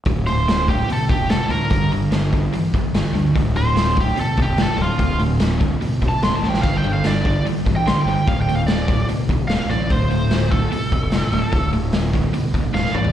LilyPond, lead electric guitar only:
\new Staff \with { instrumentName = "Lead electric guitar" } { \time 4/4 \key d \minor \tempo 4 = 146 r8 c''4 g'8 a'8 g'8 a'8 bes'8~ | bes'8 r2. r8 | r8 c''4 g'8 a'8 g'8 a'8 f'8~ | f'8 r4. \tuplet 3/2 { r4 a''8 c'''8 a''8 g''8 } |
\tuplet 3/2 { f''8 g''8 f''8 } d''4 \tuplet 3/2 { r4 g''8 c'''8 g''8 g''8 } | \tuplet 3/2 { f''8 g''8 f''8 } d''4 r4 f''8 d''8 | c''4. a'2~ a'8~ | a'8 r2 r8 f''8 d''8 | }